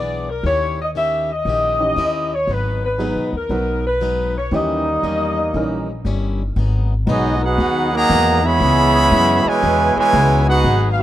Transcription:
Already playing: B1 E3 B3 D4 G#4 D5
0.30 A#4
0.43 D#2 D#3 C#4 E4 G4 C#5
0.82 D#5
0.95 D#3 C#4 E4 G4 E5
1.31 D#5
1.45 A#1 D#3 C#4 E4
1.49 G4
1.79 E3 C#4 D#4 G4
1.96 D#2 D#3 C#4 E4 G4
2.34 C#5
2.47 G#1 G#2 F#3 B3 D#4 B4
2.85 B4
2.98 G#2 F#3 B3 D#4 G#4
3.16 B1
3.33 D#2
3.37 A#4
3.49 B1 G#2 F#3 B3 D#4 B4
3.87 B4
4.01 G#2 F#3 B3 D#4
4.37 C#5
4.51 D#2 D#3 E3 G3 A#3 C#4 D#4 E4 G4 D#5
5.03 E2 D#3 G3 C#4 E4
5.54 A#1 D#3 E3 G3 C#4 D#4 E4 A#4
6.05 G1 D#3 G3 C#4 E4
6.56 G#1 G#2 F#3 B3 D#4
7.07 B1 G#2 F#3 B3 D#4 F#4 G#4 D#5
7.42 B3 D#4 F#4 G#4 B4 F#5
7.58 D#2 G#2 F#3 B3 D#4
7.92 D#3 F#3 A#3 G#4 D#5 F#5 A#5
8.09 E2 G#2 F#3 B3 D#4
8.44 E3 G#3 B3 G#4 C#5 E5 B5
8.60 C#2 C#3 G#3 B3 E4
9.11 F#2 C#3 G#3 B3 E4
9.44 B2 E3 G#3 E4 B4 C#5 G#5, muted upright bass stroke
9.61 E2 C#3 G#3 B3 E4
9.96 B2 E3 G#3 E4 B4 C#5 G#5, muted upright bass stroke
10.13 C#2 C#3 G#3 B3 E4
10.47 B3 D#4 F#4 G#4 B4 F#5
10.64 G#1 G#2 F#3 B3 D#4
10.91 F5
10.98 B3 D#4 F#4

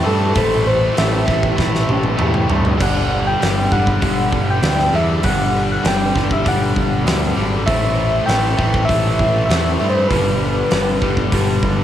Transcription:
Already playing: A2 E3 A3 G4 C5 E5 A5 C6
0.02 G2 A2 E3 A3 E4 A4
0.07 G3 C4
0.34 A1 A2 E3 G3 A3 C4 E4 C5, kick, open hi-hat
0.65 G3 C4 E4 C5
0.95 A2 E3 G3 A3 C4 E4 G4 E5, snare, open hi-hat
0.99 A1
1.25 A1 A2 E3 A3 C4 E4, kick
1.29 E3 G3, snare
1.43 kick
1.56 A1 A2 E3 G3 A3 C4 G4, kick, snare
1.60 E4
1.75 snare
1.88 A1 G3 C4 E4, high tom
2.03 high tom
2.16 E2 A2 E3 G3 A3 C4 E4 G4, mid tom
2.34 mid tom
2.47 G2 A2 E3 G3 A3 C4 E4 A4, floor tom
2.65 floor tom
2.77 G1 G2 D3 G3 B3 D5, kick, open hi-hat, crash
2.81 D4 D5 F#5 B5
3.09 B3 D4
3.27 G5
3.39 G1 G2 D3 G3 B3 D4 G4, open hi-hat
3.43 G3, snare
3.71 G1 G2 D3 G3 B3 D4 F#5, kick
3.87 kick
4.01 G1 G2 D3 G3 B3 D4 G4, kick, open hi-hat
4.32 G1 B3 D4, kick
4.50 G5
4.62 D2 G2 D3 G3 B3 D4 G4, snare, open hi-hat
4.79 snare
4.92 E2 G2 D3 G3 B3 D4 A4 E5
5.22 G1 G2 D3 G3 B3 D4 D5 F#5, kick, open hi-hat
5.54 B3 D4
5.72 F#5
5.82 G1 G2 D3 G3 B3 D4, snare, open hi-hat
5.86 D3 G3 G4 G5
6.14 G1 G2 D3 G3 B3 D4, kick, snare
6.19 D3
6.31 E5, kick
6.44 G1 G2 D3 G3 B3 D4 G4, kick, open hi-hat
6.48 D3 G3 F#5
6.75 G1 B3 D4, kick
7.04 D2 G2 D3 G3 B3 D4 G4, snare, open hi-hat
7.24 snare
7.35 G#1 G2 D3 F#3 G3 B3 D4 A4
7.66 A1 A2 E3 G3 A3 C4 E4 A4 C5 E5 C6, kick, open hi-hat
7.97 G3 C4 E4
8.26 A1 A2 E3 G3 A3 C4 E4 G4 G5, snare, open hi-hat
8.57 A1 A2 E3 G3 A3 C4 E4, kick
8.61 E3
8.74 kick
8.85 A2 E3 E5
8.89 A1 A2 E3 G3 A3 C4 E4 G4, kick, open hi-hat
9.19 A1 G3 C4 E4, kick
9.46 E2 A2 E3 G3 A3 E5
9.50 C4 E4 G4, snare, open hi-hat
9.79 G2 A2 E3 G3 A3 C4 E4 A4
9.90 C5
10.08 G1 G2 D3 G3 B3 D4 B4 D5 F#5 D6, kick, open hi-hat
10.40 B3 D4
10.70 G1 G2 D3 G3 B3 D4 G4, snare, open hi-hat
11.01 G1 G2 D3 G3 B3 D4, kick
11.17 kick
11.31 G1 G2 D3 G3 B3 D4 G4, kick, open hi-hat
11.61 G1 B3 D4, kick

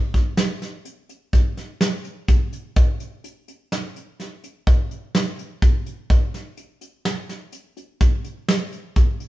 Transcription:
0.14 kick, closed hi-hat
0.37 snare, closed hi-hat
0.62 snare, closed hi-hat
0.85 closed hi-hat
1.09 closed hi-hat
1.33 kick, closed hi-hat
1.57 snare, closed hi-hat
1.81 snare, closed hi-hat
2.04 closed hi-hat
2.28 kick, closed hi-hat
2.53 closed hi-hat
2.76 kick, closed hi-hat
3.00 closed hi-hat
3.24 closed hi-hat
3.48 closed hi-hat
3.72 snare, closed hi-hat
3.96 closed hi-hat
4.20 snare, closed hi-hat
4.44 closed hi-hat
4.67 kick, closed hi-hat
4.91 closed hi-hat
5.15 snare, closed hi-hat
5.39 closed hi-hat
5.62 kick, closed hi-hat
5.86 closed hi-hat
6.10 kick, closed hi-hat
6.34 snare, closed hi-hat
6.57 closed hi-hat
6.81 closed hi-hat
7.05 snare, closed hi-hat
7.29 snare, closed hi-hat
7.52 closed hi-hat
7.77 closed hi-hat
8.01 kick, snare, closed hi-hat
8.24 closed hi-hat
8.48 snare, closed hi-hat
8.72 closed hi-hat
8.96 kick, closed hi-hat
9.20 closed hi-hat

